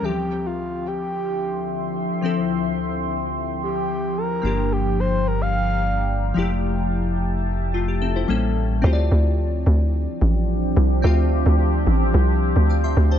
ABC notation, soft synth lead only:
X:1
M:4/4
L:1/16
Q:1/4=109
K:Dm
V:1 name="Soft synth lead"
G3 F3 G8 z2 | z8 z2 G4 B2- | B2 G2 c2 B f6- f z2 | z16 |
z16 | z16 |]